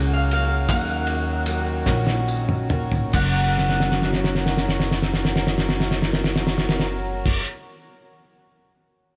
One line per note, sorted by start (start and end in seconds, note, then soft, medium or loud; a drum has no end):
0.00 0.65 C#2 loud
0.00 0.33 F#2 medium
0.00 0.32 C#3 medium
0.00 0.34 F#3 medium
0.00 0.67 F#3 medium
0.00 0.33 A#3 medium
0.00 0.32 C#4 medium
0.00 0.30 F#4 medium
0.00 3.10 F#4 medium
0.00 0.66 G#4 medium
0.00 0.67 C#5 medium
0.00 0.13 F#5 medium
0.14 0.32 F5 medium
0.31 0.68 F#3 soft
0.31 0.69 A#3 medium
0.31 0.69 C#4 medium
0.31 0.69 F#4 medium
0.31 0.67 F5 medium
0.31 clap soft
0.31 ride medium
0.51 tambourine soft
0.68 1.83 D#2 loud
0.68 1.46 D#3 medium
0.68 3.11 D#3 medium
0.68 1.44 F#3 medium
0.68 1.46 A#3 loud
0.68 1.47 C#4 medium
0.68 3.12 D#4 medium
0.68 1.48 F#4 loud
0.68 3.12 C#5 medium
0.68 2.24 F#5 medium
0.68 kick loud
0.68 clap loud
0.68 ride medium
0.68 tambourine loud
0.89 clap soft
0.89 tambourine soft
1.07 ride medium
1.45 1.86 F#3 medium
1.45 1.87 A#3 medium
1.45 1.86 C#4 medium
1.45 ride medium
1.45 tambourine loud
1.49 1.85 F#4 medium
1.67 clap soft
1.86 3.10 A#1 loud
1.86 2.71 D#3 medium
1.86 2.71 F#3 medium
1.86 2.71 A#3 medium
1.86 2.70 C#4 medium
1.86 2.68 F#4 medium
1.86 kick medium
1.86 snare medium
1.86 clap loud
2.07 snare medium
2.07 tambourine soft
2.28 clap soft
2.28 tambourine loud
2.49 mid tom medium
2.69 3.14 A#3 medium
2.69 3.15 C#4 medium
2.69 3.13 F#4 medium
2.69 mid tom loud
2.92 floor tom loud
2.92 tambourine soft
3.12 7.39 F#1 loud
3.12 7.42 F#2 medium
3.12 7.43 C#3 medium
3.12 7.44 F#3 medium
3.12 7.40 F#3 medium
3.12 7.44 A#3 medium
3.12 7.40 F#4 medium
3.12 7.40 A#4 medium
3.12 7.40 C#5 medium
3.12 7.40 F#5 medium
3.12 kick loud
3.12 clap medium
3.12 crash loud
3.12 tambourine medium
3.16 7.45 C#4 medium
3.16 7.45 F#4 loud
3.58 snare soft
3.69 snare soft
3.80 snare medium
3.91 snare medium
4.02 snare medium
4.13 snare medium
4.24 snare medium
4.35 snare medium
4.46 snare medium
4.57 snare medium
4.69 snare medium
4.80 snare medium
4.91 snare medium
5.02 snare medium
5.13 snare medium
5.25 snare medium
5.36 snare medium
5.47 snare medium
5.58 snare medium
5.69 snare medium
5.80 snare medium
5.91 snare medium
6.02 snare medium
6.13 snare medium
6.24 snare medium
6.36 snare medium
6.47 snare loud
6.58 snare medium
6.69 snare loud
6.80 snare medium
7.26 kick loud
7.26 crash loud